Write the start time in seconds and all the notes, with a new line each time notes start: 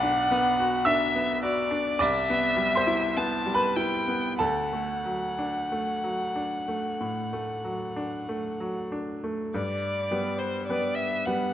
Already playing: B1 D5 F#5 D6
0.03 D4
0.31 B3
0.59 F#4
0.85 D4 E5 E6
1.15 B3
1.43 F#4 D5
1.71 D4
1.99 C2 D5 E5 D6
2.30 B3
2.57 G3
2.75 C5 C6
2.87 E4
3.17 B3 A5
3.46 G3
3.55 B4 B5
3.76 E4 G5
4.08 B3
4.39 D2 A4 F#5 A5
4.73 A3
5.05 F#3
5.39 D4
5.72 A3
6.04 F#3
6.36 D4
6.68 A3
7.01 A2
7.33 A3
7.64 F#3
7.96 D4
8.29 A3
8.60 F#3
8.92 D4
9.24 A3
9.54 G2 D5
10.11 G3 B3 B4
10.38 C5
10.66 G3 B3 B4 D5
10.95 E5
11.25 G3 B3 B4 F#5